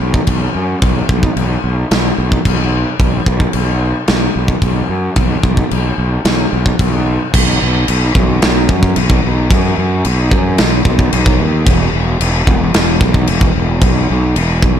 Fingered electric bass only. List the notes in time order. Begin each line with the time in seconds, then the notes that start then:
0.00 B1
0.27 B1
0.55 F#2
0.82 B1
1.09 B1
1.36 B1
1.64 B1
1.91 B1
2.18 B1
2.45 B1
2.99 B1
3.26 B1
3.54 B1
4.08 B1
4.36 B1
4.62 B1
4.89 F#2
5.16 B1
5.43 B1
5.72 B1
5.98 B1
6.25 B1
6.53 B1
6.79 B1
7.34 B1
7.62 B1
7.89 B1
8.15 B1
8.43 B1
8.69 F#2
8.97 B1
9.24 B1
9.50 F#2
9.78 F#2
10.05 B1
10.32 F#2
10.60 B1
10.85 B1
11.13 B1
11.40 D#2
11.66 E1
11.93 E1
12.20 E1
12.47 E1
12.75 E1
13.01 B1
13.28 E1
13.55 E1
13.82 B1
14.10 B1
14.36 E1
14.63 B1